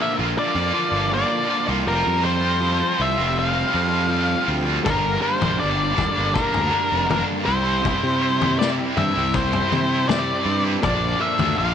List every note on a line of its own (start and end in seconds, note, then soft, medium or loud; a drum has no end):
0.00 0.19 A#2 medium
0.00 0.56 D3 medium
0.00 0.20 F3 medium
0.00 0.18 A#3 medium
0.00 0.19 F4 medium
0.00 0.12 E5 medium
0.19 0.34 A#1 medium
0.19 0.57 F3 medium
0.19 0.55 A#3 medium
0.19 0.55 F4 medium
0.39 1.09 D5 medium
0.55 0.71 F2 medium
0.55 0.73 F3 medium
0.55 0.74 A#3 medium
0.55 0.75 F4 medium
0.73 1.10 D3 medium
0.73 1.11 F3 medium
0.73 1.11 A#3 medium
0.73 1.12 F4 medium
0.92 1.22 G1 medium
1.10 1.84 A#2 medium
1.10 1.47 D3 medium
1.10 1.48 F3 medium
1.10 1.48 A#3 medium
1.10 1.50 F4 medium
1.10 1.66 D5 medium
1.48 1.84 D3 medium
1.48 1.68 F3 medium
1.48 1.65 A#3 medium
1.48 1.65 F4 medium
1.65 1.84 C2 medium
1.65 1.85 F3 soft
1.65 1.84 A#3 medium
1.65 1.86 F4 medium
1.85 2.02 F1 medium
1.85 2.22 F3 medium
1.85 2.22 G3 medium
1.85 2.22 C4 medium
1.85 2.24 F4 loud
1.85 2.23 A#4 medium
2.07 2.81 F2 medium
2.22 2.60 F3 medium
2.22 2.43 G3 medium
2.22 2.41 C4 medium
2.22 2.40 F4 medium
2.22 3.02 C5 medium
2.41 2.60 G3 medium
2.41 2.60 C4 medium
2.41 2.62 F4 medium
2.61 2.97 F3 medium
2.61 2.81 G3 medium
2.61 2.79 C4 medium
2.61 2.78 F4 medium
2.80 2.99 G3 medium
2.80 2.99 C4 medium
2.80 3.00 F4 medium
2.98 3.14 C2 medium
2.98 3.55 F3 medium
2.98 3.18 G3 medium
2.98 3.16 C4 medium
2.98 3.14 F4 medium
2.98 3.39 E5 medium
3.16 3.62 F1 medium
3.16 3.55 G3 medium
3.16 3.53 C4 medium
3.16 3.52 F4 medium
3.39 4.46 F5 loud
3.53 3.72 G3 medium
3.53 3.71 C4 medium
3.53 3.71 F4 medium
3.71 4.34 F2 medium
3.71 4.07 F3 medium
3.71 4.09 G3 medium
3.71 4.09 C4 medium
3.71 4.09 F4 medium
4.08 4.45 F3 medium
4.08 4.46 G3 medium
4.08 4.46 C4 medium
4.08 4.47 F4 medium
4.46 4.78 D2 medium
4.46 4.83 F3 medium
4.46 4.67 G3 medium
4.46 4.65 C4 medium
4.46 4.64 F4 medium
4.65 4.84 G3 soft
4.65 4.84 C4 medium
4.65 4.83 F4 medium
4.83 5.16 G1 medium
4.83 5.57 G2 medium
4.83 5.20 D3 medium
4.83 5.21 G3 medium
4.83 5.20 A#3 loud
4.83 5.22 D4 medium
4.83 5.21 A#4 medium
4.83 kick loud
4.83 floor tom medium
5.21 5.58 D3 medium
5.21 5.42 G3 medium
5.21 5.41 A#3 medium
5.21 5.41 D4 medium
5.21 5.58 C5 medium
5.41 5.57 A#1 medium
5.41 5.59 G3 medium
5.41 5.58 A#3 medium
5.41 5.59 D4 medium
5.41 floor tom medium
5.41 mid tom medium
5.58 5.91 G1 medium
5.58 6.16 G2 medium
5.58 5.93 D3 medium
5.58 5.79 G3 medium
5.58 5.76 A#3 medium
5.58 5.76 D4 medium
5.58 6.37 D5 medium
5.76 5.94 G3 medium
5.76 5.94 A#3 medium
5.76 5.96 D4 medium
5.94 6.52 D3 medium
5.94 6.14 G3 medium
5.94 6.13 A#3 medium
5.94 6.12 D4 medium
5.94 kick medium
5.98 floor tom medium
5.98 mid tom medium
6.12 6.52 G3 medium
6.12 6.51 A#3 medium
6.12 6.51 D4 medium
6.18 6.32 G1 medium
6.34 7.06 A#4 medium
6.34 kick loud
6.52 6.68 G3 medium
6.52 6.68 A#3 medium
6.52 6.70 D4 medium
6.52 floor tom medium
6.56 6.70 D2 medium
6.68 7.05 D3 medium
6.68 7.06 G3 medium
6.68 7.06 A#3 medium
6.68 7.07 D4 medium
6.92 7.21 F1 medium
7.05 7.43 G2 medium
7.05 7.43 D3 medium
7.05 7.44 G3 medium
7.05 7.44 A#3 medium
7.05 7.46 D4 medium
7.10 7.21 A#4 medium
7.10 floor tom medium
7.10 mid tom medium
7.44 7.92 C2 medium
7.44 7.81 C3 medium
7.44 7.64 G3 medium
7.44 7.63 C4 medium
7.44 7.62 E4 medium
7.44 8.58 C5 medium
7.63 7.81 G3 medium
7.63 7.82 C4 medium
7.63 7.83 E4 medium
7.82 8.19 C3 medium
7.82 8.20 G3 medium
7.82 8.21 C4 medium
7.82 8.21 E4 medium
7.82 kick loud
7.82 floor tom medium
8.04 8.78 C3 medium
8.20 8.56 C3 medium
8.20 8.39 G3 medium
8.20 8.39 C4 medium
8.20 8.37 E4 medium
8.39 8.57 G3 medium
8.39 8.58 C4 medium
8.39 8.59 E4 medium
8.39 floor tom medium
8.39 mid tom medium
8.58 8.94 C3 medium
8.58 8.78 G3 medium
8.58 8.78 C4 medium
8.58 8.76 E4 medium
8.58 8.69 D5 medium
8.58 snare medium
8.77 8.96 G3 medium
8.77 8.97 C4 medium
8.77 8.97 E4 medium
8.96 9.12 G2 medium
8.96 9.52 C3 medium
8.96 9.15 G3 medium
8.96 9.14 C4 medium
8.96 9.13 E4 medium
8.96 9.36 E5 medium
8.96 floor tom medium
8.96 mid tom medium
9.14 9.60 C2 medium
9.14 9.51 G3 medium
9.14 9.50 C4 medium
9.14 9.50 E4 medium
9.34 10.05 C5 medium
9.34 kick loud
9.51 9.67 G3 medium
9.51 9.67 C4 medium
9.51 9.69 E4 medium
9.51 floor tom medium
9.67 10.05 C3 medium
9.67 10.05 G3 medium
9.67 10.06 C4 medium
9.67 10.07 E4 medium
9.72 10.31 C3 medium
9.72 mid tom medium
10.06 10.42 C3 medium
10.06 10.44 G3 medium
10.06 10.44 C4 medium
10.06 10.44 E4 medium
10.06 10.61 D5 loud
10.06 snare medium
10.06 floor tom medium
10.06 mid tom medium
10.44 10.75 G2 medium
10.44 10.80 C3 medium
10.44 10.64 G3 medium
10.44 10.63 C4 medium
10.44 10.62 E4 medium
10.63 10.81 G3 medium
10.63 10.81 C4 medium
10.63 10.80 E4 medium
10.80 11.13 A#1 loud
10.80 11.54 A#2 medium
10.80 11.17 D3 medium
10.80 11.18 F3 medium
10.80 11.19 A#3 medium
10.80 11.19 D4 loud
10.80 11.18 D5 medium
10.80 kick loud
10.80 floor tom medium
11.18 11.54 D3 medium
11.18 11.37 F3 medium
11.18 11.36 A#3 medium
11.18 11.36 D4 medium
11.18 11.58 E5 medium
11.37 11.54 D2 medium
11.37 11.55 F3 medium
11.37 11.55 A#3 medium
11.37 11.56 D4 medium
11.37 floor tom medium
11.37 mid tom medium
11.55 11.74 A#1 medium
11.55 11.74 A#2 medium
11.55 11.74 D3 medium
11.55 11.74 F3 loud
11.55 11.73 A#3 loud
11.55 11.72 D4 loud
11.55 11.74 F5 loud